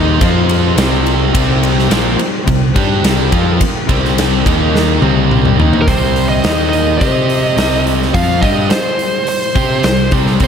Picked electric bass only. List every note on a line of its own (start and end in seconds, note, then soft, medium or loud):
0.00 0.19 D#2 loud
0.21 0.74 F2 loud
0.77 1.30 C2 medium
1.34 1.87 C2 medium
1.90 2.17 A#1 medium
2.48 2.74 C2 medium
2.76 3.02 G2 loud
3.03 3.30 C2 medium
3.33 3.59 F2 loud
3.89 4.42 C2 medium
4.46 4.98 D#2 medium
5.02 5.55 C2 loud
5.59 5.85 D#2 loud
5.88 6.40 C2 medium
6.45 6.97 D#2 medium
7.01 7.54 C3 medium
7.57 8.10 C2 medium
8.15 8.41 F2 medium
8.43 8.69 G2 medium
9.55 9.82 C3 medium
9.84 10.10 C2 medium
10.12 10.39 C2 medium
10.41 10.47 C2 medium